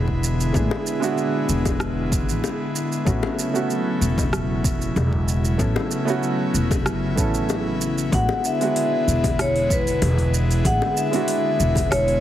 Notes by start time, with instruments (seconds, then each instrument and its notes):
Already playing: upright bass E1, analog synth pad D3 G#3 B3 E4, grand piano G#3 B3 D4 E4 F#4
0.08 kick
0.24 shaker
0.40 shaker
0.53 upright bass A1, grand piano G#3 B3 D4 E4 G#4, kick, shaker
0.71 high bongo
0.87 shaker
1.00 grand piano G#3 B3 D4 E4, shaker
1.04 grand piano F#4
1.18 shaker
1.49 upright bass E1, shaker
1.65 kick, high bongo, shaker
1.80 cross-stick, shaker
2.12 kick, shaker
2.28 upright bass A1, shaker
2.44 high bongo, shaker
2.76 shaker
2.92 shaker
3.05 upright bass A1, analog synth pad C#3 F#3 A3 E4, grand piano A3 B3 C#4 E4 F#4, kick, shaker
3.23 high bongo
3.39 shaker
3.53 grand piano A3 B3 C#4 E4 F#4, shaker
3.70 shaker
4.01 upright bass E1, shaker
4.18 kick, high bongo, shaker
4.33 cross-stick, shaker
4.64 kick, shaker
4.82 shaker
4.96 upright bass E1, high bongo, shaker
5.13 kick
5.28 shaker
5.45 shaker
5.58 upright bass A1, grand piano A3 B3 C#4 E4 A4, kick, shaker
5.76 high bongo
5.91 shaker
6.05 grand piano A3 B3 C#4 E4, shaker
6.10 grand piano F#4
6.23 shaker
6.54 upright bass E1, shaker
6.71 kick, high bongo, shaker
6.85 upright bass F#1, cross-stick, shaker
7.16 upright bass A1, grand piano A3 B3 C#4 E4, kick, shaker
7.20 grand piano A4
7.34 shaker
7.49 high bongo, shaker
7.81 shaker
7.98 shaker
8.12 upright bass A1, analog synth pad D3 G#3 B3, grand piano G#3 B3 D4 E4 F#4, vibraphone F#5, kick, open hi-hat, shaker
8.29 high bongo
8.45 vibraphone E5, shaker
8.61 grand piano G#3 B3 D4 E4 F#4, open hi-hat, shaker
8.76 open hi-hat, shaker
9.07 upright bass E1, shaker
9.24 kick, open hi-hat, high bongo, shaker
9.39 vibraphone C#5, cross-stick, open hi-hat, shaker
9.56 open hi-hat
9.70 vibraphone B4, kick, shaker
9.87 open hi-hat, shaker
10.02 upright bass E1, open hi-hat, high bongo, shaker
10.18 kick, open hi-hat
10.34 shaker
10.51 open hi-hat, shaker
10.64 upright bass A1, grand piano G#3 B3 D4 E4 G#4, vibraphone F#5, kick, open hi-hat, shaker
10.82 high bongo
10.97 vibraphone E5, shaker
11.11 grand piano G#3 B3 D4 E4, open hi-hat, shaker
11.16 grand piano F#4
11.28 open hi-hat, shaker
11.60 upright bass E1, shaker
11.75 kick, open hi-hat, high bongo, shaker
11.91 vibraphone C#5, cross-stick, open hi-hat, shaker
12.08 open hi-hat